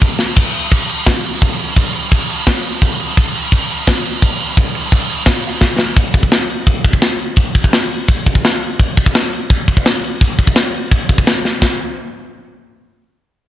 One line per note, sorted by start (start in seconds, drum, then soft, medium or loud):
0.01 kick loud
0.01 crash loud
0.19 snare medium
0.36 kick loud
0.36 crash loud
0.36 crash medium
0.54 crash medium
0.71 kick loud
0.71 crash loud
0.89 crash medium
1.06 kick loud
1.06 snare loud
1.06 crash loud
1.24 crash medium
1.42 kick loud
1.42 crash loud
1.59 crash medium
1.76 kick loud
1.76 crash loud
1.93 crash medium
2.11 kick loud
2.11 crash loud
2.30 crash medium
2.47 kick loud
2.47 snare loud
2.47 crash medium
2.64 crash medium
2.82 kick medium
2.82 crash loud
3.00 crash medium
3.17 kick loud
3.17 crash medium
3.35 crash medium
3.52 kick loud
3.52 crash loud
3.70 crash medium
3.87 kick loud
3.87 snare loud
3.87 crash loud
4.05 crash medium
4.22 kick loud
4.22 crash medium
4.40 crash medium
4.57 kick loud
4.57 crash medium
4.75 crash medium
4.92 kick loud
4.92 crash loud
5.10 crash medium
5.26 kick loud
5.26 snare loud
5.26 crash loud
5.44 crash medium
5.61 kick loud
5.61 snare medium
5.79 snare medium
5.96 kick loud
5.96 open hi-hat medium
6.14 kick medium
6.14 open hi-hat medium
6.23 kick medium
6.32 snare loud
6.32 open hi-hat medium
6.50 open hi-hat soft
6.67 kick loud
6.67 open hi-hat medium
6.84 kick medium
6.84 open hi-hat soft
6.93 kick medium
7.02 snare loud
7.02 open hi-hat medium
7.19 open hi-hat soft
7.36 kick loud
7.36 open hi-hat medium
7.55 kick medium
7.55 open hi-hat medium
7.64 kick medium
7.73 snare loud
7.73 open hi-hat medium
7.91 open hi-hat medium
8.08 kick loud
8.08 open hi-hat medium
8.26 kick medium
8.26 open hi-hat medium
8.35 kick medium
8.45 snare loud
8.45 open hi-hat medium
8.63 open hi-hat medium
8.80 kick loud
8.80 open hi-hat medium
8.97 kick medium
8.97 open hi-hat medium
9.06 kick medium
9.15 snare loud
9.15 open hi-hat medium
9.33 open hi-hat soft
9.50 kick loud
9.50 open hi-hat medium
9.68 kick medium
9.68 open hi-hat medium
9.77 kick medium
9.86 snare loud
9.86 open hi-hat medium
10.04 open hi-hat medium
10.21 kick loud
10.21 open hi-hat medium
10.39 kick medium
10.39 open hi-hat medium
10.47 kick medium
10.56 snare loud
10.56 open hi-hat medium
10.75 open hi-hat medium
10.91 kick loud
10.91 open hi-hat medium
11.09 kick medium
11.09 open hi-hat medium
11.18 kick medium
11.27 snare loud
11.27 open hi-hat medium
11.45 snare medium
11.62 kick medium
11.62 snare medium
11.62 china medium